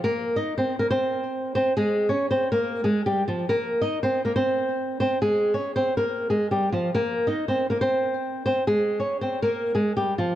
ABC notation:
X:1
M:4/4
L:1/16
Q:1/4=139
K:Cphr
V:1 name="Nylon-string guitar"
[B,B]3 [Ee]2 [Cc]2 [B,B] [Cc]6 [Cc]2 | [A,A]3 [Dd]2 [Cc]2 [B,B]3 [A,A]2 [G,G]2 [F,F]2 | [B,B]3 [Ee]2 [Cc]2 [B,B] [Cc]6 [Cc]2 | [A,A]3 [Dd]2 [Cc]2 [B,B]3 [A,A]2 [G,G]2 [F,F]2 |
[B,B]3 [Ee]2 [Cc]2 [B,B] [Cc]6 [Cc]2 | [A,A]3 [Dd]2 [Cc]2 [B,B]3 [A,A]2 [G,G]2 [F,F]2 |]